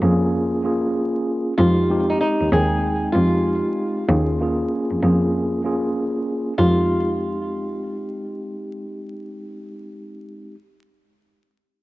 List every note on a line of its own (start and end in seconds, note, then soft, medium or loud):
0.02 1.11 F2 medium
0.02 0.61 A#3 loud
0.02 0.61 C#4 loud
0.02 0.61 F4 medium
0.02 0.62 G#4 loud
0.63 1.52 A#3 medium
0.63 1.53 C#4 medium
0.63 1.53 F4 medium
0.63 1.53 G#4 loud
1.57 2.10 F2 loud
1.57 1.87 G#3 medium
1.57 1.88 C4 medium
1.57 1.88 D#4 medium
1.57 2.06 F4 medium
1.57 1.88 G4 medium
1.89 2.48 G#3 medium
1.89 2.48 C4 medium
1.89 2.49 D#4 medium
1.89 2.49 G4 loud
2.10 2.19 D#4 medium
2.21 2.49 D#4 medium
2.41 2.49 D#2 soft
2.53 3.03 D#2 medium
2.53 3.11 G#3 medium
2.53 3.11 C4 medium
2.53 3.12 D#4 medium
2.53 3.11 G#4 medium
2.53 3.12 G5 loud
3.12 3.56 F2 medium
3.12 4.03 G#3 medium
3.12 4.03 C4 medium
3.12 4.03 F4 medium
3.17 4.04 D#4 medium
3.17 4.04 G4 medium
4.08 4.60 D#2 loud
4.08 4.38 A#3 medium
4.08 4.38 C#4 medium
4.08 4.38 F4 medium
4.08 4.39 G#4 loud
4.41 4.99 A#3 medium
4.41 4.99 C#4 medium
4.41 5.00 F4 medium
4.41 5.00 G#4 medium
4.91 4.99 F2 soft
5.02 6.12 F2 medium
5.02 5.61 A#3 loud
5.02 5.61 C#4 medium
5.02 5.62 F4 medium
5.02 5.62 G#4 loud
5.64 6.52 A#3 medium
5.64 6.53 C#4 medium
5.64 6.53 F4 medium
5.64 6.53 G#4 loud
6.58 9.85 F2 medium
6.58 10.54 G#3 medium
6.58 10.54 C4 medium
6.58 10.54 D#4 medium
6.58 8.42 F4 medium
6.58 10.54 G4 medium